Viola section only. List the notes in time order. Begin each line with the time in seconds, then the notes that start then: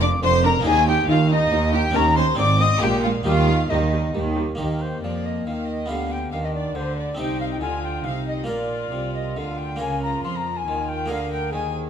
0.01 D4
0.22 D4
0.44 D4
0.66 D#4
0.87 D#4
1.08 D#4
1.30 D#4
1.52 D#4
1.74 D#4
1.95 C#4
2.18 C#4
2.39 C4
2.61 C4
2.83 G#3
3.05 G#3
3.26 G3
3.48 G3
3.70 G3
3.92 G3
4.15 G3
4.37 G3
4.59 A#3
5.90 B3
6.33 D4
7.18 D#4
7.61 F4
8.04 D#4
8.48 F4
9.80 F4
10.68 F4
11.10 A#4
11.54 G#4